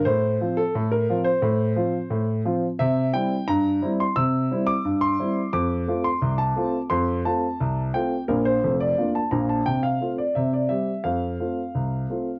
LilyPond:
<<
  \new Staff \with { instrumentName = "Grand piano" } { \time 2/4 \key f \major \tempo 4 = 87 c''8. a'8 bes'8 c''16~ | c''4. r8 | e''8 g''8 bes''8. c'''16 | e'''8. d'''8 c'''8. |
d'''8. c'''8 a''8. | c'''8 a''4 g''8 | bes'16 c''8 d''8 a''16 bes''16 a''16 | g''16 f''8 d''16 e''16 d''16 e''8 |
f''2 | }
  \new Staff \with { instrumentName = "Grand piano" } { \time 2/4 \key f \major a,8 <f c' f'>8 a,8 <f c' f'>8 | a,8 <f c' f'>8 a,8 <f c' f'>8 | c8 <g c' e'>8 g,8 <g c' e'>8 | c8 <g c' e'>8 g,8 <g c' e'>8 |
f,8 <a c' f'>8 c,8 <a c' f'>8 | f,8 <a c' f'>8 c,8 <a c' f'>8 | <bes,, bes,>8 <f,, f,>8 <bes d' f'>8 <bes,, bes,>8 | c8 <a c' f'>8 c8 <g c' g'>8 |
f,8 <a c' f'>8 c,8 <a c' f'>8 | }
>>